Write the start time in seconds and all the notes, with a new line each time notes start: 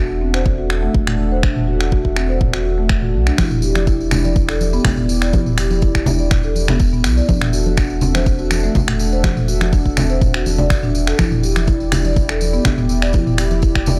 Already playing: E1 D4 A4 E5 F#5
0.21 C4
0.34 C5, finger snap
0.46 kick
0.58 F#4
0.70 finger snap
0.83 A3
0.94 E1, kick
1.07 A3, finger snap, mid tom
1.32 C5
1.43 D4, finger snap, kick
1.56 mid tom
1.67 F#4
1.81 finger snap
1.92 F#4, kick
2.05 kick
2.16 C4, finger snap
2.29 C5
2.41 kick, mid tom
2.53 F#4, finger snap
2.65 F#4
2.78 A3
2.89 finger snap, kick
3.02 F#4, mid tom
3.14 B1
3.27 D4, finger snap
3.38 E1 E4 G4 D5, finger snap, kick, tambourine, high conga
3.51 mid tom, tambourine
3.62 G4, tambourine
3.75 finger snap, tambourine, high conga
3.87 E4, kick, tambourine
4.00 tambourine
4.11 D4, finger snap, tambourine, low conga
4.24 D5, tambourine, high conga
4.36 kick, tambourine
4.49 A4, finger snap, tambourine
4.61 tambourine, high conga
4.73 B3, tambourine
4.85 E1, finger snap, kick, tambourine, low conga
4.97 B3, mid tom, tambourine
5.09 tambourine
5.22 D5, finger snap, tambourine
5.33 E4, kick, tambourine, high conga
5.46 mid tom, tambourine
5.58 G4, finger snap, tambourine
5.71 tambourine, high conga
5.82 E4, kick, tambourine
5.95 finger snap, kick, tambourine
6.06 D4, tambourine, low conga
6.18 D5, tambourine
6.31 finger snap, kick, mid tom, tambourine
6.43 A4, tambourine
6.55 tambourine, high conga
6.68 B3, finger snap, tambourine, low conga
6.79 kick, tambourine
6.93 B3, mid tom, tambourine
7.04 B1, finger snap, tambourine
7.17 D5, tambourine
7.29 E1 D4 A4 E5 F#5, kick, tambourine, high conga
7.42 finger snap, mid tom
7.53 F#4, tambourine
7.65 tambourine, high conga
7.77 D4, finger snap, kick, tambourine
7.90 tambourine
8.01 C4, tambourine, low conga
8.15 C5, finger snap, tambourine, high conga
8.26 kick, tambourine
8.39 F#4, tambourine
8.51 finger snap, tambourine, high conga
8.63 A3, tambourine
8.75 E1, kick, tambourine, low conga
8.88 A3, finger snap, mid tom, tambourine
8.99 tambourine
9.12 C5, tambourine
9.24 D4, finger snap, kick, tambourine, high conga
9.37 mid tom, tambourine
9.48 F#4, tambourine
9.61 finger snap, tambourine, high conga
9.72 D4, kick, tambourine
9.86 kick, tambourine
9.97 C4, finger snap, tambourine, low conga
10.10 C5, tambourine
10.21 kick, mid tom, tambourine
10.34 F#4, finger snap, tambourine
10.46 E1, tambourine, high conga
10.58 D5, tambourine, low conga
10.70 finger snap, kick, tambourine
10.83 D4, mid tom, tambourine
10.95 tambourine
11.07 A4, finger snap, tambourine
11.19 E1 E4 G4 D5, finger snap, kick, tambourine, high conga
11.32 mid tom, tambourine
11.43 G4, tambourine
11.56 finger snap, tambourine, high conga
11.67 E4, kick, tambourine
11.80 tambourine
11.92 D4, finger snap, tambourine, low conga
12.05 D5, tambourine, high conga
12.16 kick, tambourine
12.29 A4, finger snap, tambourine
12.41 tambourine, high conga
12.53 B3, tambourine
12.65 E1, finger snap, kick, tambourine, low conga
12.78 B3, mid tom, tambourine
12.89 tambourine
13.02 D5, finger snap, tambourine
13.13 E4, kick, tambourine, high conga
13.27 mid tom, tambourine
13.38 G4, finger snap, tambourine
13.51 tambourine, high conga
13.62 E4, kick, tambourine
13.75 finger snap, kick, tambourine
13.86 D4, tambourine, low conga